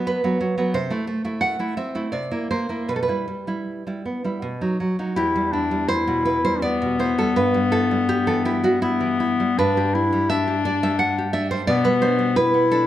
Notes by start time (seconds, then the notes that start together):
Already playing: F#3 B3
0.07 B4
0.24 F#3 B3
0.41 F#3
0.58 F#3 B3
0.74 C3 C5
0.90 A3 E4
1.07 A3
1.25 A3 E4
1.41 F#5
1.59 A3 E4
1.77 C4 E5
1.95 A3 E4
2.12 C3 D5
2.31 A#3 E4
2.51 A#3 C5
2.69 A#3 E4
2.89 B2 B4
2.96 A4
3.03 B4
3.08 G3 E4
3.28 G3
3.47 G3 E4
3.87 G3 E4
4.05 B3
4.24 G3 E4
4.42 B2
4.61 F#3 D#4
4.80 F#3
4.99 F#3 D#4
5.16 E2 E4 G4
5.36 G3
5.53 D4 E4
5.71 G3
5.88 E4 C5
6.07 B2
6.25 E4 B4
6.45 G3 C5
6.62 B3 D5
6.82 B2
6.99 E4 C5
7.18 G3 A4
7.36 G2 B4
7.54 G3
7.72 E4 A4
7.91 G3
8.09 G4
8.27 E3 A4
8.45 E4 G4
8.63 G3 F#4
8.82 B3 E4
9.01 E3
9.20 E4
9.40 G3
9.58 G2 D4 B4
9.77 G4
9.95 D4 E4
10.12 G3
10.30 D4 E5
10.47 G4
10.65 D4 D5
10.83 G3 E5
10.99 F#5
11.18 G4
11.33 D4 E5
11.51 G3 C5
11.67 B2 B3 D5
11.84 G3 B4
12.02 D4 C5
12.19 G3
12.36 E4 B4
12.54 B3
12.71 D4 A4